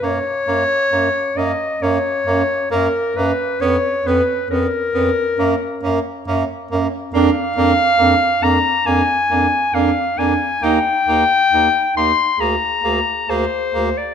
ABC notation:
X:1
M:4/4
L:1/16
Q:1/4=68
K:F#mix
V:1 name="Clarinet"
c6 d2 c4 A2 B2 | c2 B2 A8 z4 | [K:Bbmix] f6 b2 a4 f2 a2 | g6 c'2 b4 c3 d |]
V:2 name="Alto saxophone"
C2 C2 C2 C2 C2 C2 C2 C2 | C2 C2 C2 C2 C2 C2 C2 C2 | [K:Bbmix] D2 D2 D2 D2 D2 D2 D2 D2 | E2 E2 E2 E2 A2 A2 A2 A2 |]
V:3 name="Tenor saxophone"
A,2 A,2 A,2 A,2 A,2 A,2 A,2 A,2 | B,2 B,2 B,2 B,2 A,2 A,2 A,2 A,2 | [K:Bbmix] B,2 B,2 B,2 B,2 B,2 B,2 B,2 B,2 | B,2 B,2 B,2 B,2 B,2 B,2 B,2 B,2 |]
V:4 name="Bass clarinet" clef=bass
F,,2 F,,2 F,,2 F,,2 F,,2 F,,2 F,,2 F,,2 | ^E,,2 E,,2 E,,2 E,,2 F,,2 F,,2 F,,2 F,,2 | [K:Bbmix] F,,2 F,,2 F,,2 F,,2 F,,2 F,,2 F,,2 F,,2 | E,,2 E,,2 E,,2 E,,2 D,,2 D,,2 D,,2 D,,2 |]